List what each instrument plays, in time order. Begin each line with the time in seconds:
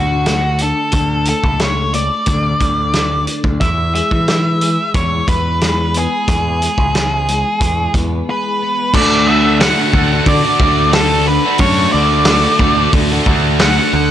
Already playing: picked electric bass D2, clean electric guitar D3 A3 D4, lead electric guitar F#4
0.26 clean electric guitar A3, snare, closed hi-hat
0.58 clean electric guitar D4, lead electric guitar A4, closed hi-hat
0.92 picked electric bass D2, kick, closed hi-hat
1.25 clean electric guitar A3, lead electric guitar A4, closed hi-hat
1.44 picked electric bass C#2, kick
1.59 lead electric guitar C#5, snare, closed hi-hat
1.94 clean electric guitar A3, lead electric guitar D5, closed hi-hat
2.26 picked electric bass D2, clean electric guitar D3, kick, closed hi-hat
2.60 picked electric bass D2, clean electric guitar D4, kick, closed hi-hat
2.93 clean electric guitar A3, snare, closed hi-hat
3.27 clean electric guitar D4, closed hi-hat
3.44 picked electric bass D2, kick
3.60 picked electric bass E2, clean electric guitar E3, lead electric guitar E5, kick, closed hi-hat
3.94 clean electric guitar G#3, lead electric guitar E5, closed hi-hat
4.11 picked electric bass E3, kick
4.28 clean electric guitar E3, snare, closed hi-hat
4.61 clean electric guitar G#3, closed hi-hat
4.94 picked electric bass E2, clean electric guitar E3, lead electric guitar C#5, kick, closed hi-hat
5.28 picked electric bass E2, clean electric guitar B3, lead electric guitar B4, kick, closed hi-hat
5.61 clean electric guitar G#3, snare, closed hi-hat
5.94 clean electric guitar B3, lead electric guitar G#4, closed hi-hat
6.28 picked electric bass E2, clean electric guitar E3, kick, closed hi-hat
6.62 clean electric guitar G#3, closed hi-hat
6.78 picked electric bass C#2, kick
6.95 clean electric guitar E3, snare, closed hi-hat
7.28 clean electric guitar G#3, closed hi-hat
7.60 picked electric bass E2, clean electric guitar E3, kick, closed hi-hat
7.94 picked electric bass E2, clean electric guitar B3, kick, closed hi-hat
8.29 clean electric guitar G#3, lead electric guitar B4
8.62 clean electric guitar B3
8.94 picked electric bass D2, distorted electric guitar D3 A3 D4 F#4 A4, lead electric guitar D5, kick, crash
9.27 distorted electric guitar A3 D4 F#4 A4, lead electric guitar E5
9.60 distorted electric guitar D3 A3 D4 F#4 A4, lead electric guitar F#5, snare, open hi-hat
9.78 distorted electric guitar D4 F#4 A4
9.93 picked electric bass D2, distorted electric guitar A3 D4 F#4 A4, kick
10.11 distorted electric guitar D4 F#4 A4
10.26 picked electric bass D3, lead electric guitar D5, kick, open hi-hat
10.43 distorted electric guitar D4 F#4 A4
10.60 picked electric bass D2, distorted electric guitar A3 D4 F#4 A4, kick
10.93 distorted electric guitar D3 A3 D4 F#4 A4, lead electric guitar A4, snare, open hi-hat
11.10 distorted electric guitar D4 F#4 A4
11.27 lead electric guitar B4, muted distorted electric guitar stroke
11.45 distorted electric guitar D4 F#4 A4
11.58 picked electric bass F#2, distorted electric guitar D3, lead electric guitar C#5, kick, open hi-hat
11.62 distorted electric guitar A3 D4 F#4 A4
11.93 picked electric bass D2, distorted electric guitar A3 D4, lead electric guitar D5
11.97 distorted electric guitar F#4 A4
12.25 distorted electric guitar D3, snare, open hi-hat
12.29 distorted electric guitar A3 D4 F#4 A4
12.46 distorted electric guitar D4 F#4 A4
12.59 picked electric bass D2, distorted electric guitar A3 D4 F#4 A4, kick
12.77 distorted electric guitar D4 F#4 A4
12.93 picked electric bass D2, kick, open hi-hat
13.11 distorted electric guitar D4 F#4 A4
13.26 picked electric bass D2, distorted electric guitar A3 D4 F#4 A4, kick
13.59 distorted electric guitar D3 A3 D4 F#4 A4, lead electric guitar F#5, snare, open hi-hat
13.78 distorted electric guitar D4 F#4 A4
13.93 picked electric bass D2, muted distorted electric guitar stroke